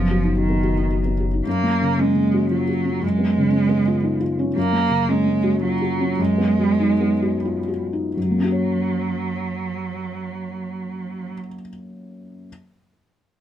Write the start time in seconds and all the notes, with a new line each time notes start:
Already playing: F#1 F#2 F3 B3
0.11 F#4
0.24 D#4
0.37 D#3 F#3
0.50 B3
0.63 F#4
0.78 D#4
0.92 F#3
1.05 B3
1.20 F#4
1.34 D#4
1.46 F#2 A#3
1.63 A#3
1.82 C#3
1.99 G#3 C#4
2.16 A#3
2.34 F#4
2.51 F#3 F4
2.69 F#4
2.85 C#4
3.02 F#2 G#3
3.18 B3
3.38 C#3
3.52 C#4
3.69 B3
3.88 F4
4.04 D#4
4.20 F4
4.39 C#4
4.56 F#2 A#3
4.73 A#3
4.90 C#3
5.09 G#3 C#4
5.26 A#3
5.44 F#4
5.62 F#3 F4
5.82 F#4
6.01 C#4
6.19 F#2 G#3
6.38 B3
6.59 F#3
6.80 D#4
7.01 B3
7.22 F#4
7.45 F4
7.68 F#4
7.93 D#4
8.17 F#2 F#3
8.24 F#3
8.31 A#3
8.38 C#4
8.44 F#4
8.52 C#5